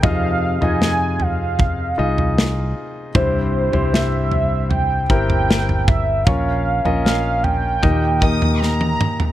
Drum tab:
SD |----o-------o---|----o-------o---|----o-------o---|
T1 |----------------|----------------|-------------o--|
T2 |----------------|----------------|--------------o-|
FT |o--o--o-o--o----|o--o--o-o--o-oo-|o--o--o-o--o---o|
BD |o-------o-------|o---------o---o-|o-------o-o-----|